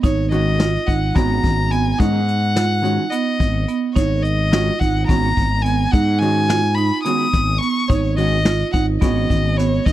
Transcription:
0.03 G#1 D#4 C#5, kick, closed hi-hat
0.31 D#3 G#3 C#4 F#4 D#5, closed hi-hat
0.60 F4, snare, closed hi-hat
0.86 G#1 D#4 F#5, kick, closed hi-hat
1.15 G#1 D#3 G#3 B3 C#4 F#4 A#5, kick, closed hi-hat
1.44 G#1, kick, closed hi-hat
1.71 B3 G#5, closed hi-hat
1.99 G#2 D#3 G#3 C#4 D#4 F#5, kick, closed hi-hat
2.28 closed hi-hat
2.55 F4, snare, closed hi-hat
2.82 D#3 G#3 C#4 D#4 F#4, closed hi-hat
3.10 B3 D#5, closed hi-hat
3.40 G#1, kick, closed hi-hat
3.68 B3, closed hi-hat
3.93 G#1 D#4 C#5, kick, closed hi-hat
4.22 D#5, closed hi-hat
4.51 D#3 G#3 C#4 F4 F#4, snare, closed hi-hat
4.79 G#1 D#4 F#5, kick, closed hi-hat
5.06 G#1 D#3 G#3 B3 C#4 F#4 A#5, kick, closed hi-hat
5.37 G#1, kick, closed hi-hat
5.62 B3 G#5, closed hi-hat
5.91 G#2 D#4 F#5, kick, closed hi-hat
6.19 D#3 G#3 C#4 F#4 G#5, closed hi-hat
6.49 F4, snare, closed hi-hat
6.75 D#4 B5, closed hi-hat
7.03 D#3 G#3 B3 C#4 F#4 D#6, closed hi-hat
7.34 G#1, kick, snare, closed hi-hat
7.58 B3 C#6, closed hi-hat
7.88 G#1 D#4 C#5, kick, closed hi-hat
8.16 D#3 G#3 C#4 F#4 D#5, closed hi-hat
8.45 F4, snare, closed hi-hat
8.72 G#1 D#4 F#5, kick, closed hi-hat
9.01 G#1 D#3 G#3 B3 C#4 F#4 D#5, kick, closed hi-hat
9.30 G#1, kick, closed hi-hat
9.57 B3 C#5, snare, closed hi-hat
9.85 G#1 D#4 D#5, kick, closed hi-hat

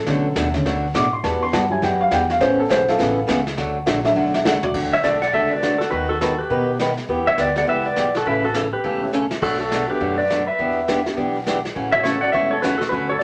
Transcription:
Already playing: A4
0.06 B1 B2 D3 F#3 A3 C#4 D4 F#4, brush sweep, kick, snare
0.36 D#2 B2 F#3 A3 D4 F#4, kick, snare, hi-hat pedal
0.54 D3 A3 C#4, snare
0.65 D2 B2 F#3 A3 D4 F#4, brush sweep, kick, snare
0.94 A2 B2 F#3 A3 D4 F#4 D6, kick, snare, hi-hat pedal
1.13 C6
1.24 E2 E3 G3 B3 F#4 A5, brush sweep, kick, snare
1.43 C6
1.53 G2 E3 G3 B3 F#4 A5, kick, snare, hi-hat pedal
1.70 F#3 G3 E4 G#5
1.82 F#2 E3 G3 B3 F#4 G5, brush sweep, kick, snare
2.01 F5
2.11 E2 E3 G3 B3 F#4 G5, kick, snare, hi-hat pedal
2.30 F5, snare
2.39 A1 C#3 E3 A3 B3 C#4 C5, brush sweep, kick, snare
2.59 A4
2.68 B1 C#3 E3 B3 C#4 C5, kick, snare, hi-hat pedal
2.88 F4 A4, snare
2.98 A1 C#3 E3 B3 C#4, brush sweep, kick, snare
3.27 C#2 C#3 E3 B3 C#4, kick, snare, hi-hat pedal
3.47 snare
3.57 D2 D3 F#3 A3 D4 F#4, brush sweep, kick, snare
3.86 A#1 D3 F#3 A3 D4 F#4, kick, snare, hi-hat pedal
4.04 F#3 A3 D4 E5, snare
4.15 B1 D3 F#3 A3 D4 F#4 F#5
4.34 E5, snare
4.45 C#2 D3 F#3 A3 D4 F#4 F#5, snare, hi-hat pedal
4.63 F#4 D5, floor tom
4.74 D2 D3 F#3 A3 D4 F#4, brush sweep, kick, crash
4.93 C#5 E5
5.03 B1 D3 F#3 A3 D4 F#4 A4 D5, snare, hi-hat pedal
5.22 D5 F#5, snare
5.33 C#2 D3 F#3 A3 D4 F#4 A4 E5, brush sweep, kick
5.50 A3 D4 F#4 A4 B4 D5
5.62 D2 D3 F#3 A3 D4 F#4, snare, hi-hat pedal
5.78 F#4 A4, snare
5.91 D#2 D#3 F#3 B3 D#4 F#4 B4, brush sweep, kick
6.09 F#4 A4
6.21 D#3 F#3 B3 D#4 F#4 A4 B4, snare, hi-hat pedal
6.39 G4 B4
6.50 B2 D#3 F#3 B3 D#4 B4, brush sweep, kick
6.79 D#3 F#3 B3 D#4 B4, snare, hi-hat pedal
6.97 snare
7.08 E2 E3 B3 E4 G4 B4, brush sweep, kick
7.27 C#5 E5
7.38 D2 E3 B3 E4 G4 B4 D5, snare, hi-hat pedal
7.55 B3 E4 G4 A4 D5 F#5, snare
7.67 C#2 E3 B3 E4 G4 B4 E5, brush sweep, kick
7.86 B4 D5
7.96 B1 E3 B3 E4 G4, snare, hi-hat pedal
8.15 F#4 A4, snare
8.25 A1 C#3 E3 A3 C#4 E4 A4 B4, brush sweep, kick
8.44 F#4 A4
8.54 C#3 E3 A3 C#4 E4 A4, snare, hi-hat pedal
8.73 G4 B4
8.84 E1 C#3 E3 A3 C#4 A4, brush sweep, kick
9.02 A3 C#4 E4 A4
9.13 C#3 E3 A3 C#4 A4, hi-hat pedal
9.31 snare
9.41 B1 B2 F#3 A3 D4 F#4 A4, brush sweep, kick, crash
9.61 F#4 A4
9.71 B2 F#3 A3 D4 F#4, snare, hi-hat pedal
9.88 B3 D4 F#4 G4 A4 B4
10.01 F#2 B2 F#3 A3 D4 F#4, brush sweep, kick
10.18 B4 D5
10.30 B2 F#3 A3 D4 F#4, snare, hi-hat pedal
10.47 B4 E5
10.59 E2 E3 B3 D4 G4, brush sweep, kick
10.88 E3 B3 D4 G4, snare, hi-hat pedal
11.06 B3 D4 E4 G4, snare
11.17 B1 E3 B3 D4 G4, brush sweep, kick
11.46 E3 B3 D4 G4, snare, hi-hat pedal
11.65 snare
11.75 A1 C#3 E3 A3 C#4 F#4, brush sweep, kick
11.92 A3 C#4 E4 F#4 C#5 E5
12.03 C#3 E3 A3 C#4 F#4 A4 C#5, snare, hi-hat pedal
12.21 A3 C#4 E4 F#4 D5 F#5
12.32 E1 C#3 E3 A3 C#4 F#4 C#5 E5, brush sweep, kick
12.51 A4 C#5
12.62 C#3 E3 A3 C#4 F#4 B4, snare, hi-hat pedal
12.78 F#4 A4, snare
12.89 D2 D3 F#3 A3 C#4 F#4 B4, brush sweep, kick
13.09 A4 C#5
13.19 D5

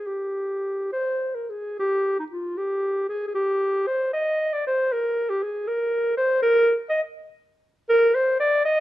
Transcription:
0.07 G4
0.92 C5
1.35 A#4
1.50 G#4
1.79 G4
2.19 D#4
2.32 F4
2.57 G4
3.09 G#4
3.28 G#4
3.35 G4
3.87 C5
4.14 D#5
4.53 D5
4.67 C5
4.92 A#4
5.29 G4
5.43 G#4
5.67 A#4
6.17 C5
6.42 A#4
6.90 D#5
7.89 A#4
8.15 C5
8.40 D5
8.65 D#5

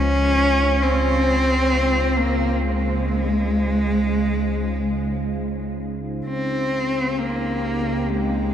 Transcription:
Already playing: C#2 C#3 C#4 D#4 F4 C5 F5
0.82 C4
2.17 A#3
2.62 G#3
6.26 C#2 C4
6.63 C4
6.74 G4
6.88 D#4
6.93 G5
7.19 A#3
8.10 G#3

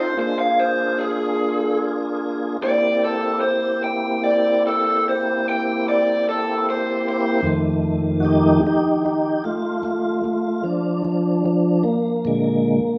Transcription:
Already playing: C4 D#4 F4 A4 C5
0.17 A#3 D4 F4 G#4 C5
0.39 F5
0.59 C5
0.99 G#4
2.61 A#3 C4 E4 G4 D5
3.04 A4
3.41 C5
3.84 G5
4.24 D5
4.67 A4
5.09 C5
5.49 G5
5.89 D5
6.29 A4
6.70 C5
7.09 C5
7.42 F2 D#3 A3
8.20 D#4 F#4
8.25 G4
8.67 D#4 G4
9.05 D#4 G4
9.44 A3 F4
9.83 A3 F4
10.24 A3 F4
10.64 F3 D4
11.05 F3 D4
11.44 F3 D4
11.84 A#3
12.25 A#2 D3 G#3

